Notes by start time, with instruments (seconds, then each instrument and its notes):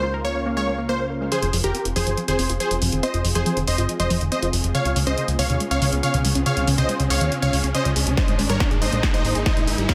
Already playing: analog synth bass C#2, analog synth pad C#3 C#4 F4 A#4 F5, supersaw synth C5
0.03 synth pluck F4
0.14 synth pluck A#4
0.25 synth pluck A#3, supersaw synth C#5
0.35 synth pluck A#3
0.46 synth pluck A#3
0.57 synth pluck G#3, supersaw synth C#5
0.67 synth pluck A#3
0.78 synth pluck A#3
0.89 synth pluck A#3, supersaw synth C5
1.00 synth pluck A#3
1.10 synth pluck A#3
1.21 synth pluck G#3
1.32 synth pluck F3, analog synth pad C4 F4 G#4, supersaw synth G#4 C5, closed hi-hat, riser
1.42 analog synth bass F1, synth pluck F3, closed hi-hat
1.53 analog synth bass F1, synth pluck F3, open hi-hat
1.64 analog synth bass F1, synth pluck D#3, supersaw synth G4 A#4, closed hi-hat
1.74 synth pluck C4, closed hi-hat
1.85 analog synth bass F1, synth pluck F4, closed hi-hat
1.96 analog synth bass F1, synth pluck F3, supersaw synth G#4 C5, open hi-hat
2.07 analog synth bass G1, synth pluck F3, closed hi-hat
2.17 synth pluck F3, closed hi-hat
2.28 analog synth bass F1, synth pluck D#3, supersaw synth G#4 C5, closed hi-hat
2.39 analog synth bass F1, synth pluck C4, open hi-hat
2.50 analog synth bass F1, synth pluck F4, closed hi-hat
2.60 synth pluck F3, supersaw synth G#4 C5, closed hi-hat
2.71 analog synth bass F1, synth pluck F3, closed hi-hat
2.82 analog synth bass F1, synth pluck F3, open hi-hat
2.92 analog synth bass F1, synth pluck D#3, closed hi-hat
3.03 synth pluck C4, supersaw synth C5 D#5, closed hi-hat
3.14 analog synth bass F1, synth pluck F4, closed hi-hat
3.25 analog synth bass F1, synth pluck F3, open hi-hat
3.35 analog synth bass F1, synth pluck F3, supersaw synth G#4 C5, closed hi-hat
3.46 synth pluck F3, closed hi-hat
3.57 analog synth bass F1, synth pluck D#3, closed hi-hat
3.67 analog synth bass F1, synth pluck C4, supersaw synth C5 D#5, open hi-hat
3.78 analog synth bass G1, synth pluck F4, closed hi-hat
3.89 synth pluck F3, closed hi-hat
4.00 analog synth bass F1, synth pluck F3, supersaw synth C5 D#5, closed hi-hat
4.10 analog synth bass F1, synth pluck F3, open hi-hat
4.21 analog synth bass F1, synth pluck D#3, closed hi-hat
4.32 synth pluck C4, supersaw synth C5 D#5, closed hi-hat
4.42 analog synth bass F1, synth pluck F4, closed hi-hat
4.53 analog synth bass F1, synth pluck F3, open hi-hat
4.64 analog synth bass F1, synth pluck F3, closed hi-hat
4.75 synth pluck C#3, analog synth pad C#4, supersaw synth C#5 F5, closed hi-hat
4.85 analog synth bass C#2, synth pluck C3, closed hi-hat
4.96 analog synth bass C#2, synth pluck G#3, open hi-hat
5.07 analog synth bass C#2, synth pluck C#4, supersaw synth C5 D#5, closed hi-hat
5.17 synth pluck C#3, closed hi-hat
5.28 analog synth bass C#2, synth pluck C#3, closed hi-hat
5.39 analog synth bass C#2, synth pluck C#3, supersaw synth C#5 F5, open hi-hat
5.50 analog synth bass D#2, synth pluck C3, closed hi-hat
5.60 synth pluck G#3, closed hi-hat
5.71 analog synth bass C#2, synth pluck C#4, supersaw synth C#5 F5, closed hi-hat
5.82 analog synth bass C#2, synth pluck C#3, open hi-hat
5.92 analog synth bass C#2, synth pluck C#3, closed hi-hat
6.03 synth pluck C#3, supersaw synth C#5 F5, closed hi-hat
6.14 analog synth bass C#2, synth pluck C3, closed hi-hat
6.25 analog synth bass C#2, synth pluck G#3, open hi-hat
6.35 analog synth bass C#2, synth pluck C#4, closed hi-hat
6.46 synth pluck C#3, supersaw synth C#5 F5, closed hi-hat
6.57 analog synth bass C#2, synth pluck C#3, closed hi-hat
6.67 analog synth bass C#2, synth pluck C#3, open hi-hat
6.78 analog synth bass C#2, synth pluck C3, supersaw synth C5 D#5, closed hi-hat
6.89 synth pluck G#3, closed hi-hat
7.00 analog synth bass C#2, synth pluck C#4, closed hi-hat
7.10 analog synth bass C#2, synth pluck C#3, supersaw synth C#5 F5, open hi-hat
7.21 analog synth bass D#2, synth pluck C#3, closed hi-hat
7.32 synth pluck C#3, closed hi-hat
7.42 analog synth bass C#2, synth pluck C3, supersaw synth C#5 F5, closed hi-hat
7.53 analog synth bass C#2, synth pluck G#3, open hi-hat
7.64 analog synth bass C#2, synth pluck C#4, closed hi-hat
7.75 synth pluck C#3, supersaw synth C5 D#5, closed hi-hat
7.85 analog synth bass C#2, synth pluck C#3, closed hi-hat
7.96 analog synth bass C#2, synth pluck C#3, open hi-hat
8.07 analog synth bass C#2, synth pluck C3, closed hi-hat
8.17 analog synth pad A#3 D#4, supersaw synth C5 D#5, kick, snare, closed hi-hat
8.28 analog synth bass G#1, synth pluck G#3, closed hi-hat
8.39 analog synth bass G#1, synth pluck G#3, open hi-hat
8.49 analog synth bass G#1, synth pluck G3, supersaw synth A#4 C#5, closed hi-hat
8.60 synth pluck D#4, kick, snare, closed hi-hat
8.71 analog synth bass G#1, synth pluck G#4, closed hi-hat
8.82 analog synth bass G#1, synth pluck G#3, supersaw synth C5 D#5, open hi-hat
8.92 analog synth bass A#1, synth pluck G#3, closed hi-hat
9.03 synth pluck G#3, kick, snare, closed hi-hat
9.14 analog synth bass G#1, synth pluck G3, supersaw synth C5 D#5, closed hi-hat
9.25 analog synth bass G#1, synth pluck D#4, open hi-hat
9.35 analog synth bass G#1, synth pluck G#4, closed hi-hat
9.46 synth pluck G#3, supersaw synth C5 D#5, kick, snare, closed hi-hat
9.57 analog synth bass G#1, synth pluck G#3, closed hi-hat
9.67 analog synth bass G#1, synth pluck G#3, open hi-hat
9.78 analog synth bass G#1, synth pluck G3, closed hi-hat
9.89 synth pluck G#3, analog synth pad C#4 F4, supersaw synth C#5 F5, kick, snare, closed hi-hat